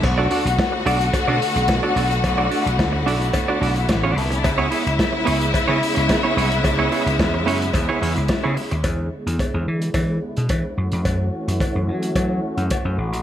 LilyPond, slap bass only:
\new Staff \with { instrumentName = "Slap bass" } { \clef bass \time 4/4 \key b \dorian \tempo 4 = 109 b,,8 r16 b,,16 r8 b,,8 r16 b,16 r16 b,,8 r16 b,,8 | b,,8 r16 b,,16 d,8 b,,8 r8 b,,8 a,,8 c,8 | cis,8 r16 cis,16 r8 cis,8 r16 cis16 r16 cis,16 r8 c,8 | cis,8 r16 cis,16 e,8 fis,8 e,16 r16 e,16 cis,16 r16 cis16 r16 dis,16 |
e,8 r16 e,16 r16 e,16 e8 e8 r16 b,16 e16 r16 fis,16 eis,16 | fis,8 r16 fis,16 r16 fis,16 fis8 fis8 r16 fis,16 r16 fis,16 a,,16 ais,,16 | }